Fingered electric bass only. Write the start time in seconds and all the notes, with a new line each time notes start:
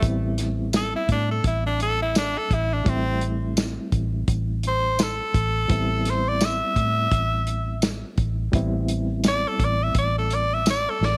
0.03 A1
1.09 A2
1.44 A1
2.51 A1
2.86 A1
3.92 A1
4.28 A1
5.34 A1
5.70 A1
6.76 A2
7.12 A1
8.18 A1
8.53 A1
9.59 A1
9.95 A1
11.01 A1